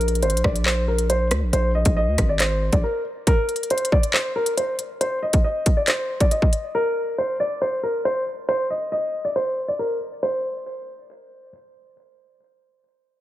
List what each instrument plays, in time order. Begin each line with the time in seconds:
Already playing: 808-style bass A#1, grand piano A#4
0.01 closed hi-hat
0.08 closed hi-hat
0.15 closed hi-hat
0.23 808-style bass G#1, grand piano C5, closed hi-hat
0.30 808-style bass A#1, closed hi-hat
0.37 closed hi-hat
0.44 808-style bass A#1, grand piano D5, kick, cross-stick
0.56 closed hi-hat
0.66 grand piano C5, clap
0.88 grand piano A#4
0.98 closed hi-hat
1.10 grand piano C5, closed hi-hat
1.31 808-style bass D2, cross-stick, closed hi-hat
1.42 808-style bass A#1
1.53 808-style bass A#1, grand piano C5, closed hi-hat
1.75 grand piano D#5
1.85 808-style bass A#1, kick, closed hi-hat
1.97 grand piano D#5
2.07 808-style bass D2
2.18 808-style bass G#1, kick, cross-stick, closed hi-hat
2.29 grand piano D5
2.40 grand piano C5, clap, closed hi-hat
2.73 808-style bass A#1, grand piano D5, kick, closed hi-hat
2.84 grand piano A#4
3.27 grand piano A#4, kick, closed hi-hat
3.49 closed hi-hat
3.56 closed hi-hat
3.63 closed hi-hat
3.70 grand piano C5, closed hi-hat
3.78 closed hi-hat
3.85 closed hi-hat
3.92 grand piano D5, kick
4.03 closed hi-hat
4.14 grand piano C5, clap
4.36 grand piano A#4
4.46 closed hi-hat
4.57 grand piano C5, closed hi-hat
4.79 closed hi-hat
5.01 grand piano C5, closed hi-hat
5.23 grand piano D#5
5.33 kick, closed hi-hat
5.44 grand piano D#5
5.66 kick, closed hi-hat
5.77 grand piano D5
5.88 grand piano C5, clap, closed hi-hat
6.20 grand piano D5, kick, closed hi-hat
6.31 grand piano D#5, closed hi-hat
6.42 kick
6.53 closed hi-hat
6.75 grand piano A#4
7.18 grand piano C5
7.40 grand piano D5
7.62 grand piano C5
7.83 grand piano A#4
8.05 grand piano C5
8.49 grand piano C5
8.70 grand piano D#5
8.92 grand piano D#5
9.25 grand piano D5
9.36 grand piano C5
9.68 grand piano D5
9.79 grand piano A#4
10.23 grand piano C5